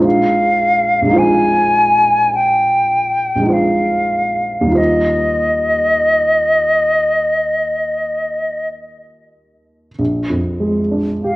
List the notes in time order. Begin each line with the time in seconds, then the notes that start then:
Already playing: A#1 G#3 D#4 F4
0.01 C5 F5
1.02 A#1 G#3
1.09 D#4 F4
1.16 C5 G#5
2.35 G5
3.36 A#1 G#3
3.43 D#4 F4
3.50 C5 F5
4.61 D#2 G3
4.68 D#4 F4
4.75 C5 D#5
9.98 A#1
10.30 F2
10.60 G#3
10.91 D4
11.24 G4 F5